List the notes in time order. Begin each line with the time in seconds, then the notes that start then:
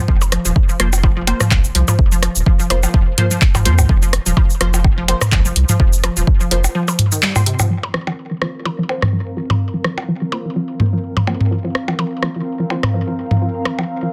0.08 F1 F3, kick
0.21 percussion blips, shaker
0.32 F3, cross-stick, closed hi-hat
0.45 D#1 F3, shaker
0.56 kick
0.69 F3, shaker
0.80 F1 F3 A#3 F4 C5, cross-stick, closed hi-hat
0.93 percussion blips, shaker
1.04 F3, kick, percussion blips
1.17 F3
1.27 A#3 F4 C5, closed hi-hat, percussion blips
1.40 F3, cross-stick, mid tom, shaker
1.51 C2 F3, kick, clap, percussion blips
1.64 F1, shaker
1.75 C2 F3, closed hi-hat
1.88 F3, mid tom, percussion blips, shaker
1.99 F1, kick
2.12 F3, shaker
2.23 F3, cross-stick, closed hi-hat
2.36 D#1, shaker
2.46 F3, kick
2.59 F3, shaker
2.70 F1 A#3 F4 C5, closed hi-hat, percussion blips
2.83 F3, percussion blips, shaker
2.94 F1 F3, kick
3.18 F3 A#3 F4 C5, closed hi-hat, mid tom
3.31 F3, shaker
3.42 kick, clap
3.55 F1 F3, mid tom, percussion blips, shaker
3.65 F2 F3 A#3 F4 C5, closed hi-hat
3.79 C2, mid tom, percussion blips, shaker
3.89 F1 F3, kick
4.02 F3, shaker
4.13 cross-stick, closed hi-hat
4.26 D#1 F3, shaker
4.37 F3, kick, percussion blips
4.50 shaker
4.61 F1 F3 A#3 F4 C5, cross-stick, closed hi-hat
4.74 F3, percussion blips, shaker
4.84 kick, percussion blips
4.98 F3
5.08 F3 A#3 F4 C5, closed hi-hat, percussion blips
5.21 cross-stick, mid tom, percussion blips, shaker
5.32 C2 F3, kick, clap, percussion blips
5.45 F1 F3, shaker
5.56 C2, closed hi-hat
5.69 F3, mid tom, shaker
5.80 F1 F3, kick
5.93 shaker
6.04 F3, cross-stick, closed hi-hat, percussion blips
6.17 D#1 F3, shaker
6.27 kick
6.40 F3, shaker
6.51 F1 F3 A#3 F4 C5, closed hi-hat
6.64 percussion blips, shaker
6.75 F3
6.88 F3, percussion blips, shaker
6.99 closed hi-hat, mid tom
7.12 D#3, shaker
7.23 G3, clap
7.36 A#3 F4 C5, mid tom, percussion blips, shaker
7.46 C3, closed hi-hat
7.60 F3, mid tom, percussion blips, shaker
7.70 F1 F3 C4
7.74 A#4
7.83 percussion blips
7.94 F3, cross-stick
8.07 D#1 F3 F5, percussion blips
8.31 F3
8.42 F1 F3 A#3 F4 C5, cross-stick
8.50 A#5
8.65 F3, percussion blips
8.79 F3
8.89 A#3 F4 C5, percussion blips
9.02 F3, cross-stick, mid tom
9.13 C2 F3
9.26 F1
9.37 C2 F3
9.50 F3, mid tom, percussion blips
9.61 F1
9.74 F3
9.84 F3, cross-stick
9.98 D#1, percussion blips
10.08 F3
10.21 F3
10.32 F1 A#3 F4 C5, percussion blips
10.45 F3
10.56 F3
10.80 F3 A#3 F4 C5, mid tom
10.93 F3
11.17 F1 F3, mid tom, percussion blips
11.27 F2 F3 A#3 F4 C5, percussion blips
11.41 C2, mid tom
11.51 F1 F3
11.64 F3
11.75 cross-stick
11.88 D#1 F3, percussion blips
11.99 F3, percussion blips
12.23 F1 F3 A#3 F4 C5, cross-stick
12.36 F3
12.60 F3
12.70 F3 A#3 F4 C5, percussion blips
12.83 cross-stick, mid tom, percussion blips
12.94 C2 F3
13.07 F3
13.18 C2
13.31 F3, mid tom
13.42 F1 F3
13.65 F3, cross-stick, percussion blips
13.79 D#1 F3, percussion blips
14.02 F3